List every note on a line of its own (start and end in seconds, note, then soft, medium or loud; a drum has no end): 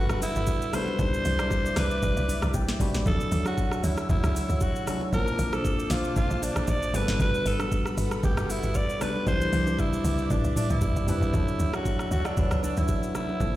0.00 0.73 G3 medium
0.00 0.73 B3 medium
0.00 0.74 D4 medium
0.00 0.20 F#4 loud
0.00 0.32 F#4 medium
0.00 0.74 F#4 medium
0.00 0.32 A4 medium
0.00 0.97 A4 medium
0.00 1.01 A4 loud
0.00 0.33 B4 loud
0.00 0.97 F#5 medium
0.00 0.97 B5 medium
0.09 0.34 F#1 medium
0.09 cross-stick loud
0.09 shaker medium
0.22 0.76 E4 loud
0.22 open hi-hat medium
0.22 low bongo medium
0.22 shaker loud
0.35 0.47 G1 medium
0.35 0.44 F#4 medium
0.35 0.44 A4 medium
0.35 0.44 B4 medium
0.35 shaker medium
0.47 kick loud
0.47 high bongo medium
0.47 shaker medium
0.62 shaker soft
0.73 0.94 G3 medium
0.73 0.94 B3 medium
0.73 0.95 D4 medium
0.73 0.83 F#4 medium
0.73 0.95 F#4 medium
0.73 0.83 A4 medium
0.73 0.83 B4 medium
0.73 0.95 B4 medium
0.73 1.80 C5 loud
0.73 cross-stick medium
0.73 open hi-hat medium
0.73 low conga medium
0.73 shaker loud
0.88 low bongo medium
0.98 1.23 C2 loud
0.98 1.82 G3 medium
0.98 1.82 C4 medium
0.98 1.83 D4 medium
0.98 1.07 D#4 medium
0.98 1.09 E4 loud
0.98 1.09 B4 medium
0.98 1.83 C5 medium
0.98 1.09 D5 loud
0.98 3.04 D5 medium
0.98 3.04 E5 medium
0.98 3.04 D6 medium
0.98 kick loud
0.98 low conga medium
0.98 shaker medium
1.07 1.86 E4 medium
1.14 shaker medium
1.25 1.73 C2 loud
1.25 open hi-hat soft
1.25 shaker medium
1.39 1.47 E4 medium
1.39 1.47 B4 medium
1.39 1.47 D5 medium
1.39 cross-stick loud
1.39 low bongo medium
1.39 shaker soft
1.50 kick loud
1.50 high bongo medium
1.50 shaker medium
1.65 low bongo medium
1.65 shaker medium
1.76 2.00 C2 loud
1.76 1.86 E4 medium
1.76 1.86 B4 medium
1.76 2.55 B4 loud
1.76 1.87 D5 medium
1.76 cross-stick medium
1.76 snare medium
1.76 open hi-hat medium
1.76 shaker medium
1.91 shaker medium
2.02 2.16 B1 medium
2.02 2.39 E4 medium
2.02 2.39 B4 medium
2.02 2.39 D5 loud
2.02 kick loud
2.02 high bongo medium
2.02 low conga medium
2.02 shaker medium
2.17 2.40 C2 loud
2.17 shaker medium
2.28 open hi-hat medium
2.28 low bongo medium
2.28 shaker loud
2.42 2.53 C2 medium
2.42 2.50 E4 medium
2.42 2.51 B4 medium
2.42 2.51 D5 medium
2.42 cross-stick loud
2.42 shaker medium
2.54 2.78 B1 loud
2.54 2.79 G5 medium
2.54 kick medium
2.54 high bongo medium
2.54 shaker loud
2.69 snare medium
2.69 shaker medium
2.80 2.93 A1 medium
2.80 3.01 G3 medium
2.80 3.01 C4 medium
2.80 3.02 D4 medium
2.80 2.90 E4 medium
2.80 3.02 E4 medium
2.80 3.02 F#4 loud
2.80 2.90 B4 medium
2.80 2.90 D5 medium
2.80 3.05 B5 medium
2.80 kick loud
2.80 open hi-hat medium
2.80 low conga medium
2.80 shaker medium
2.94 3.05 A1 medium
2.94 snare medium
2.94 low bongo medium
2.94 shaker soft
3.05 3.29 D2 loud
3.05 3.89 F#3 medium
3.05 3.89 C#4 medium
3.05 3.90 D4 medium
3.05 3.16 E4 medium
3.05 3.90 E4 medium
3.05 3.16 F#4 medium
3.05 3.14 G4 medium
3.05 3.44 A4 loud
3.05 5.11 C#5 medium
3.05 3.16 C#5 loud
3.05 5.11 F#5 medium
3.05 5.11 E6 medium
3.05 kick loud
3.05 low conga medium
3.05 shaker medium
3.14 3.93 A4 medium
3.21 shaker medium
3.32 3.79 D2 loud
3.32 open hi-hat soft
3.32 shaker medium
3.46 3.54 E4 medium
3.46 3.54 F#4 medium
3.46 3.81 F#4 loud
3.46 3.54 C#5 medium
3.46 cross-stick medium
3.46 low bongo medium
3.46 shaker soft
3.57 kick loud
3.57 high bongo medium
3.57 shaker medium
3.71 cross-stick medium
3.71 low bongo soft
3.71 shaker medium
3.83 4.07 D2 loud
3.83 3.93 E4 medium
3.83 4.08 E4 medium
3.83 3.93 F#4 medium
3.83 3.93 C#5 medium
3.83 open hi-hat medium
3.83 shaker medium
3.97 cross-stick medium
3.97 shaker medium
4.09 4.22 D2 medium
4.09 4.46 E4 medium
4.09 4.63 E4 medium
4.09 4.46 F#4 medium
4.09 4.46 C#5 loud
4.09 kick loud
4.09 high bongo medium
4.09 low conga medium
4.09 shaker medium
4.24 4.47 C#2 medium
4.24 cross-stick loud
4.24 shaker medium
4.35 open hi-hat medium
4.35 low bongo medium
4.35 shaker loud
4.49 4.60 D2 medium
4.49 4.57 E4 medium
4.49 4.58 F#4 medium
4.49 4.58 C#5 medium
4.49 shaker medium
4.61 5.02 F#4 loud
4.61 kick medium
4.61 high bongo medium
4.61 shaker medium
4.76 shaker soft
4.86 5.08 F#3 medium
4.86 5.08 C#4 medium
4.86 5.08 D4 medium
4.86 4.97 E4 medium
4.86 5.09 E4 medium
4.86 4.97 F#4 medium
4.86 5.09 F#4 medium
4.86 cross-stick medium
4.86 open hi-hat medium
4.86 low conga medium
4.86 shaker loud
5.01 low bongo medium
5.12 5.36 A#1 loud
5.12 5.96 A#3 medium
5.12 5.96 C4 medium
5.12 5.20 C#4 medium
5.12 5.23 D4 loud
5.12 5.97 F4 medium
5.12 5.23 A4 medium
5.12 5.55 A#4 loud
5.12 6.92 C5 medium
5.12 5.23 C5 loud
5.12 6.92 A5 medium
5.12 5.97 A5 medium
5.12 6.92 D6 medium
5.12 kick loud
5.12 low conga medium
5.12 shaker medium
5.20 6.00 D4 medium
5.27 shaker medium
5.39 5.86 A#1 loud
5.39 open hi-hat soft
5.39 shaker medium
5.53 5.61 D4 medium
5.53 5.61 A4 medium
5.53 5.93 A4 loud
5.53 5.61 C5 medium
5.53 cross-stick loud
5.53 low bongo medium
5.53 shaker soft
5.64 kick loud
5.64 high bongo medium
5.64 shaker medium
5.78 low bongo medium
5.78 shaker medium
5.90 6.14 A#1 loud
5.90 6.00 D4 medium
5.90 6.17 F4 loud
5.90 6.00 A4 medium
5.90 6.00 C5 medium
5.90 snare medium
5.90 open hi-hat medium
5.90 shaker medium
6.04 shaker medium
6.16 6.29 A1 loud
6.16 6.53 D4 medium
6.16 6.45 F4 loud
6.16 6.53 A4 medium
6.16 6.53 C5 loud
6.16 kick loud
6.16 high bongo medium
6.16 low conga medium
6.16 shaker medium
6.30 6.54 A#1 loud
6.30 shaker medium
6.42 6.71 D4 loud
6.42 open hi-hat medium
6.42 low bongo medium
6.42 shaker loud
6.56 6.67 A#1 medium
6.56 6.64 D4 medium
6.56 6.64 A4 medium
6.56 6.65 C5 medium
6.56 cross-stick loud
6.56 shaker medium
6.67 6.92 A1 loud
6.67 6.97 D5 loud
6.67 kick medium
6.67 high bongo medium
6.67 shaker medium
6.83 shaker medium
6.93 7.07 G1 medium
6.93 7.77 G3 medium
6.93 7.77 B3 medium
6.93 7.78 D4 medium
6.93 7.78 F#4 medium
6.93 7.02 G#4 medium
6.93 9.24 A4 medium
6.93 7.04 A4 medium
6.93 7.04 B4 medium
6.93 7.21 B4 loud
6.93 9.24 F#5 medium
6.93 9.24 B5 medium
6.93 open hi-hat medium
6.93 low conga medium
6.93 shaker loud
7.02 7.81 A4 loud
7.08 7.19 G1 medium
7.08 snare medium
7.08 low bongo medium
7.20 7.43 G1 loud
7.20 7.30 F#4 medium
7.20 7.30 A4 medium
7.20 7.30 B4 loud
7.20 7.49 B4 loud
7.20 kick loud
7.20 low conga medium
7.20 shaker medium
7.34 shaker medium
7.45 7.93 G1 loud
7.45 7.97 A4 loud
7.45 open hi-hat soft
7.45 shaker medium
7.60 7.68 F#4 medium
7.60 7.68 A4 medium
7.60 7.68 B4 medium
7.60 cross-stick loud
7.60 low bongo medium
7.60 shaker soft
7.71 kick loud
7.71 high bongo medium
7.71 shaker medium
7.85 cross-stick medium
7.85 low bongo soft
7.85 shaker medium
7.97 8.21 G1 loud
7.97 8.07 F#4 medium
7.97 8.07 A4 medium
7.97 8.07 B4 medium
7.97 open hi-hat medium
7.97 shaker medium
8.11 cross-stick medium
8.11 shaker medium
8.23 8.36 G1 loud
8.23 8.60 F#4 loud
8.23 8.52 G4 loud
8.23 8.60 A4 medium
8.23 8.60 B4 loud
8.23 kick loud
8.23 high bongo medium
8.23 low conga medium
8.23 shaker medium
8.37 8.61 F#1 medium
8.37 cross-stick loud
8.37 shaker medium
8.49 8.78 E4 loud
8.49 open hi-hat medium
8.49 low bongo medium
8.49 shaker loud
8.63 8.74 G1 medium
8.63 8.71 F#4 medium
8.63 8.71 A4 medium
8.63 8.72 B4 medium
8.63 shaker medium
8.74 9.04 D5 loud
8.74 kick loud
8.74 high bongo medium
8.74 shaker medium
8.89 shaker soft
9.00 9.22 G3 medium
9.00 9.22 B3 medium
9.00 9.22 D4 medium
9.00 9.11 F#4 medium
9.00 9.23 F#4 medium
9.00 9.11 A4 medium
9.00 9.11 B4 medium
9.00 9.27 B4 loud
9.00 9.23 B4 medium
9.00 cross-stick medium
9.00 open hi-hat medium
9.00 low conga medium
9.00 shaker loud
9.15 low bongo medium
9.26 9.50 C2 loud
9.26 10.10 G3 medium
9.26 10.10 C4 medium
9.26 10.10 D4 medium
9.26 9.36 E4 loud
9.26 10.11 E4 medium
9.26 9.37 B4 medium
9.26 9.81 C5 loud
9.26 10.11 C5 medium
9.26 11.32 D5 medium
9.26 9.37 D5 loud
9.26 11.32 E5 medium
9.26 11.32 D6 medium
9.26 kick loud
9.26 high tom medium
9.26 low conga medium
9.26 shaker medium
9.41 shaker medium
9.53 10.00 C2 loud
9.53 open hi-hat medium
9.53 high tom medium
9.53 shaker medium
9.67 9.75 E4 medium
9.67 9.75 B4 medium
9.67 9.75 D5 medium
9.67 low bongo medium
9.67 shaker medium
9.79 10.33 E4 loud
9.79 kick loud
9.79 mid tom medium
9.79 high bongo medium
9.79 shaker medium
9.93 low bongo soft
9.93 shaker medium
10.04 10.28 C2 loud
10.04 10.14 E4 medium
10.04 10.14 B4 medium
10.04 10.14 D5 medium
10.04 open hi-hat medium
10.04 mid tom medium
10.04 shaker medium
10.18 shaker soft
10.30 10.43 B1 loud
10.30 10.57 D4 medium
10.30 10.67 E4 medium
10.30 10.67 B4 medium
10.30 10.67 D5 loud
10.30 kick loud
10.30 mid tom medium
10.30 high bongo medium
10.30 low conga medium
10.30 shaker medium
10.44 10.55 C2 medium
10.44 mid tom medium
10.44 shaker medium
10.56 10.73 D4 medium
10.56 mid tom loud
10.56 open hi-hat medium
10.56 low bongo medium
10.56 shaker loud
10.70 10.81 C2 loud
10.70 10.78 E4 medium
10.70 11.08 E4 loud
10.70 10.79 D5 medium
10.70 mid tom medium
10.70 shaker medium
10.81 10.95 B1 medium
10.81 kick medium
10.81 floor tom loud
10.81 high bongo medium
10.81 shaker medium
10.96 11.07 A1 medium
10.96 floor tom medium
10.96 shaker soft
11.07 11.29 G3 medium
11.07 11.29 C4 medium
11.07 11.29 D4 medium
11.07 11.17 E4 medium
11.07 11.76 E4 loud
11.07 11.30 E4 medium
11.07 11.18 B4 medium
11.07 11.30 B4 loud
11.07 11.18 D5 medium
11.07 floor tom loud
11.07 open hi-hat medium
11.07 low conga medium
11.07 shaker loud
11.22 11.33 A1 medium
11.22 floor tom loud
11.22 low bongo medium
11.22 shaker soft
11.33 11.57 D2 loud
11.33 12.17 F#3 medium
11.33 12.17 C#4 medium
11.33 12.17 D4 medium
11.33 11.43 E4 loud
11.33 12.18 E4 medium
11.33 11.43 F#4 medium
11.33 12.18 A4 medium
11.33 11.44 C#5 loud
11.33 13.39 C#5 medium
11.33 13.39 F#5 medium
11.33 13.39 E6 medium
11.33 kick loud
11.33 low conga medium
11.33 shaker medium
11.48 shaker medium
11.59 12.07 D2 loud
11.59 shaker medium
11.73 11.82 E4 medium
11.73 11.82 F#4 medium
11.73 12.12 F#4 loud
11.73 11.82 C#5 medium
11.73 cross-stick loud
11.73 low bongo medium
11.73 shaker soft
11.85 kick loud
11.85 high bongo medium
11.85 shaker medium
11.99 cross-stick medium
11.99 high bongo soft
11.99 shaker medium
12.11 12.35 D2 loud
12.11 12.21 E4 medium
12.11 12.21 F#4 medium
12.11 12.28 F#4 loud
12.11 12.21 C#5 medium
12.11 shaker medium
12.25 12.63 D4 loud
12.25 cross-stick medium
12.25 shaker soft
12.36 12.50 D2 medium
12.36 13.20 F#3 medium
12.36 13.20 C#4 medium
12.36 13.21 D4 medium
12.36 12.74 E4 medium
12.36 13.21 E4 medium
12.36 12.74 F#4 medium
12.36 13.21 B4 medium
12.36 12.74 C#5 loud
12.36 kick loud
12.36 high bongo medium
12.36 low conga medium
12.36 shaker medium
12.51 12.75 C#2 medium
12.51 cross-stick loud
12.51 shaker medium
12.63 12.80 D4 medium
12.63 low bongo medium
12.63 shaker loud
12.77 12.88 D2 medium
12.77 12.85 E4 medium
12.77 13.15 E4 loud
12.77 12.85 F#4 medium
12.77 12.85 C#5 medium
12.77 shaker medium
12.88 kick medium
12.88 high bongo medium
12.88 shaker medium
13.03 shaker soft
13.14 13.24 E4 medium
13.14 13.56 E4 loud
13.14 13.24 F#4 medium
13.14 13.25 C#5 medium
13.14 cross-stick medium
13.14 low conga medium
13.14 shaker medium
13.29 low bongo medium
13.40 13.56 A#1 loud
13.40 13.56 F3 medium
13.40 13.56 A#3 medium
13.40 13.56 C4 medium
13.40 13.50 D4 medium
13.40 13.56 D4 medium
13.40 13.50 A4 medium
13.40 13.56 A4 medium
13.40 13.56 C5 medium
13.40 13.50 C5 loud
13.40 13.56 A5 medium
13.40 13.56 D6 medium
13.40 kick loud
13.40 low conga medium
13.40 shaker medium